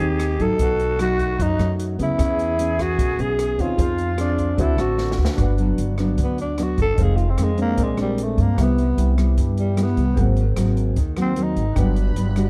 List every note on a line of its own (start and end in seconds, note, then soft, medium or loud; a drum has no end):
0.00 0.36 D#2 medium
0.00 0.57 D#3 medium
0.00 0.36 C4 medium
0.00 0.54 D#4 soft
0.00 0.36 D#4 medium
0.00 0.43 G4 loud
0.00 0.59 G#4 loud
0.00 0.56 C5 soft
0.00 0.58 G5 medium
0.19 cross-stick medium
0.19 closed hi-hat soft
0.39 0.49 G#1 medium
0.39 0.96 F#3 medium
0.39 0.96 A3 medium
0.39 0.96 D#4 medium
0.39 1.00 A4 loud
0.39 kick soft
0.39 closed hi-hat soft
0.56 1.35 B1 loud
0.56 1.37 B2 medium
0.56 2.14 D#4 soft
0.56 1.88 F#4 loud
0.56 2.15 A4 soft
0.56 kick medium
0.56 closed hi-hat soft
0.60 2.16 B4 soft
0.60 2.17 F#5 medium
0.79 closed hi-hat soft
0.99 1.38 F#3 medium
0.99 1.39 A3 medium
0.99 1.39 D#4 medium
0.99 1.44 F#4 loud
0.99 cross-stick medium
0.99 closed hi-hat soft
1.19 kick soft
1.19 closed hi-hat soft
1.39 2.17 F#2 medium
1.39 1.58 F#2 medium
1.39 1.73 D#4 loud
1.39 kick medium
1.39 closed hi-hat soft
1.59 1.96 F#2 medium
1.59 1.96 F#3 medium
1.59 1.96 A3 medium
1.59 1.96 D#4 medium
1.59 cross-stick medium
1.59 closed hi-hat soft
1.79 closed hi-hat soft
1.99 2.08 C#2 medium
1.99 2.56 B3 medium
1.99 2.56 C#4 medium
1.99 2.83 E4 loud
1.99 2.56 G#4 medium
1.99 kick soft
1.99 closed hi-hat soft
2.17 2.94 E2 loud
2.17 2.97 E3 medium
2.17 3.55 C#4 medium
2.17 3.55 G#4 soft
2.17 3.75 G#4 loud
2.17 kick medium
2.17 cross-stick medium
2.17 closed hi-hat soft
2.21 3.57 B4 soft
2.21 3.58 E5 medium
2.39 closed hi-hat soft
2.58 3.15 B3 medium
2.58 3.15 C#4 medium
2.58 3.16 G#4 medium
2.58 closed hi-hat soft
2.79 3.23 F#4 loud
2.79 kick soft
2.79 cross-stick medium
2.79 closed hi-hat soft
2.99 3.17 B1 medium
2.99 3.76 B2 medium
2.99 kick medium
2.99 closed hi-hat soft
3.18 3.56 B1 medium
3.18 3.55 B3 medium
3.18 3.56 C#4 medium
3.18 3.56 G#4 medium
3.18 3.62 G#4 loud
3.18 closed hi-hat soft
3.39 cross-stick medium
3.39 closed hi-hat soft
3.57 3.68 D#2 medium
3.57 4.15 C4 medium
3.57 3.78 C#4 soft
3.57 4.15 D#4 medium
3.57 4.19 F4 loud
3.57 3.76 G#4 soft
3.57 4.16 G#4 medium
3.57 3.79 B4 soft
3.57 3.79 C#5 soft
3.57 kick soft
3.57 closed hi-hat soft
3.75 4.54 F2 loud
3.75 4.56 F3 soft
3.75 4.55 F4 medium
3.75 4.54 F4 medium
3.75 4.56 G#4 soft
3.75 kick medium
3.75 closed hi-hat soft
3.79 4.57 C5 soft
3.79 4.58 F5 medium
3.98 closed hi-hat soft
4.17 4.56 C4 medium
4.17 4.62 D4 medium
4.17 4.56 G#4 medium
4.17 cross-stick medium
4.17 closed hi-hat soft
4.38 kick soft
4.38 closed hi-hat soft
4.55 4.78 D2 medium
4.55 5.36 D3 medium
4.55 4.75 A3 medium
4.55 4.75 C4 medium
4.55 5.33 D4 medium
4.55 4.75 F#4 medium
4.55 5.36 A4 soft
4.55 5.14 A4 medium
4.55 kick medium
4.55 closed hi-hat soft
4.59 4.82 E4 medium
4.59 5.37 C5 soft
4.59 5.38 F#5 medium
4.78 5.15 A1 medium
4.78 5.15 A3 medium
4.78 5.15 C4 medium
4.78 5.15 F#4 medium
4.78 5.19 F#4 medium
4.78 cross-stick medium
4.78 closed hi-hat soft
4.98 snare soft
5.11 snare medium
5.18 5.27 D2 medium
5.18 5.58 D4 medium
5.18 5.59 F#4 medium
5.18 5.76 B4 medium
5.25 snare medium
5.35 5.75 G1 loud
5.35 6.16 G2 soft
5.35 6.93 D4 medium
5.35 6.94 F#4 medium
5.35 kick medium
5.35 cross-stick medium
5.35 closed hi-hat soft
5.39 6.95 B4 soft
5.39 6.96 F#5 medium
5.58 5.95 F#3 medium
5.58 5.95 B3 medium
5.58 5.95 D4 medium
5.58 closed hi-hat soft
5.78 6.15 G1 medium
5.78 closed hi-hat soft
5.98 6.55 F#3 medium
5.98 6.55 B3 medium
5.98 6.55 D4 medium
5.98 cross-stick medium
5.98 closed hi-hat soft
6.18 6.74 D2 medium
6.18 6.96 D3 medium
6.18 kick medium
6.18 closed hi-hat soft
6.24 6.39 B3 medium
6.38 6.64 D4 medium
6.38 closed hi-hat soft
6.58 6.85 F#3 medium
6.58 6.85 B3 medium
6.58 6.85 D4 medium
6.58 cross-stick medium
6.58 closed hi-hat soft
6.63 6.80 F#4 medium
6.78 6.96 G1 medium
6.78 7.04 A4 loud
6.78 kick medium
6.78 closed hi-hat soft
6.95 7.35 F1 loud
6.95 7.76 F2 medium
6.95 7.24 D#3 medium
6.95 7.74 D#4 soft
6.95 7.75 G#4 soft
6.95 7.76 C5 soft
6.95 kick medium
6.95 closed hi-hat soft
6.99 7.24 G#3 medium
6.99 7.24 C4 medium
6.99 7.18 G#4 medium
6.99 7.77 F5 medium
7.16 7.31 F4 medium
7.16 closed hi-hat soft
7.30 7.45 C4 medium
7.38 7.75 F2 medium
7.38 7.50 D#3 medium
7.38 7.50 G#3 medium
7.38 7.50 C4 medium
7.38 cross-stick medium
7.38 closed hi-hat soft
7.43 7.60 G#3 medium
7.58 7.94 G#3 medium
7.58 7.94 C4 medium
7.58 7.95 D4 medium
7.58 closed hi-hat soft
7.62 7.85 A#3 medium
7.75 8.33 A#1 medium
7.75 8.55 A#2 medium
7.75 8.54 C4 medium
7.75 8.55 G#4 soft
7.75 kick medium
7.75 closed hi-hat soft
7.79 8.56 A#4 soft
7.79 8.57 D5 medium
7.84 8.00 G#3 medium
7.97 8.54 G#3 medium
7.97 8.54 C4 medium
7.97 8.54 D4 medium
7.97 cross-stick medium
7.97 closed hi-hat soft
8.02 8.25 G3 medium
8.18 closed hi-hat soft
8.23 8.43 A3 medium
8.38 8.56 G2 medium
8.38 8.65 A#3 medium
8.38 kick medium
8.38 closed hi-hat soft
8.54 8.95 C2 loud
8.54 9.35 C3 medium
8.54 8.83 G3 soft
8.54 10.12 B3 soft
8.54 8.83 B3 medium
8.54 10.13 G4 soft
8.54 kick medium
8.54 cross-stick medium
8.54 closed hi-hat soft
8.59 8.83 E4 medium
8.59 10.14 B4 soft
8.59 10.15 E5 soft
8.63 9.20 B3 medium
8.78 closed hi-hat soft
8.98 9.34 C2 medium
8.98 9.14 G3 medium
8.98 9.14 B3 medium
8.98 9.15 E4 medium
8.98 closed hi-hat soft
9.17 9.74 G3 medium
9.17 9.74 B3 medium
9.17 9.74 E4 medium
9.17 cross-stick medium
9.17 closed hi-hat soft
9.38 9.93 G2 medium
9.38 10.15 G2 medium
9.38 kick medium
9.38 closed hi-hat soft
9.57 9.84 G3 medium
9.57 closed hi-hat soft
9.77 10.02 G3 medium
9.77 10.02 B3 medium
9.77 10.03 E4 medium
9.77 cross-stick medium
9.77 closed hi-hat soft
9.83 10.20 B3 medium
9.97 10.16 C2 medium
9.97 kick medium
9.97 closed hi-hat soft
10.14 10.54 G#1 loud
10.14 10.95 G#2 medium
10.14 10.43 A#3 medium
10.14 11.71 C4 medium
10.14 11.72 G#4 soft
10.14 kick medium
10.14 closed hi-hat soft
10.18 10.43 F#3 medium
10.18 10.43 C4 medium
10.18 11.73 A#4 soft
10.18 11.74 F#5 medium
10.37 closed hi-hat soft
10.56 10.94 G#1 medium
10.56 10.96 F#3 medium
10.56 10.97 A#3 medium
10.56 10.97 C4 medium
10.56 cross-stick medium
10.56 closed hi-hat soft
10.77 closed hi-hat soft
10.96 11.52 D#2 medium
10.96 11.74 D#3 medium
10.96 kick medium
10.96 closed hi-hat soft
11.17 11.33 F#3 medium
11.17 11.34 A#3 medium
11.17 11.34 C4 medium
11.17 cross-stick medium
11.17 closed hi-hat soft
11.21 11.45 C4 medium
11.36 11.62 F#3 medium
11.36 11.62 A#3 medium
11.36 11.63 C4 medium
11.36 closed hi-hat soft
11.43 11.79 D#4 medium
11.56 11.75 G#1 medium
11.56 closed hi-hat soft
11.73 12.13 G1 loud
11.73 12.50 D4 soft
11.73 12.50 G5 soft
11.73 12.50 B5 medium
11.73 12.50 F#6 medium
11.73 kick medium
11.73 cross-stick medium
11.73 closed hi-hat soft
11.77 12.50 G2 medium
11.77 12.14 F#3 soft
11.77 12.14 B3 soft
11.77 12.14 D4 medium
11.77 12.50 B4 soft
11.77 12.50 F#5 soft
11.96 closed hi-hat soft
12.16 12.50 G1 medium
12.16 12.28 F#3 medium
12.16 12.28 B3 medium
12.16 12.28 D4 medium
12.16 closed hi-hat soft
12.36 12.50 G3 medium
12.36 12.50 D4 medium
12.36 12.50 F#4 medium
12.36 cross-stick medium
12.36 closed hi-hat soft